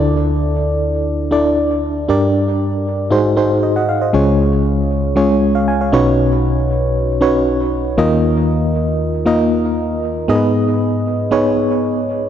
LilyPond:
<<
  \new Staff \with { instrumentName = "FM electric piano" } { \time 4/4 \key d \minor \tempo 4 = 117 << { r1 | r2. <c'' ees''>16 <ees'' ges''>16 f''16 <c'' ees''>16~ | \key cis \mixolydian <c'' ees''>16 r2 r8 <cis'' eis''>16 <eis'' gis''>16 <cis'' eis''>8 r16 | r1 |
r1 | r1 | } \\ { <d' e' a' d''>4 r4. <d' e' a' d''>4 r8 | <d' g' bes' d''>4. r8 <ees' ges' aes' c''>8 <ees' ges' aes' c''>4 r8 | <gis cis' eis' gis' cis''>4. r8 <gis cis' eis' gis' cis''>4. <cis' dis' fis' b' cis''>8~ | <cis' dis' fis' b' cis''>4 r4 <cis' dis' fis' b' cis''>4. <ais dis' eis' ais' dis''>8~ |
<ais dis' eis' ais' dis''>4 r4 <ais dis' eis' ais' dis''>4. r8 | <b dis' gis' ais' b' dis''>4. r8 <b dis' gis' b' cis''>4. r8 | } >> }
  \new Staff \with { instrumentName = "FM electric piano" } { \clef bass \time 4/4 \key d \minor <d, d>2.~ <d, d>8 r8 | g,2 aes,2 | \key cis \mixolydian <cis, cis>2.~ <cis, cis>8 <b,, b,>8~ | <b,, b,>2.~ <b,, b,>8 <dis, dis>8~ |
<dis, dis>2.~ <dis, dis>8 r8 | gis,1 | }
>>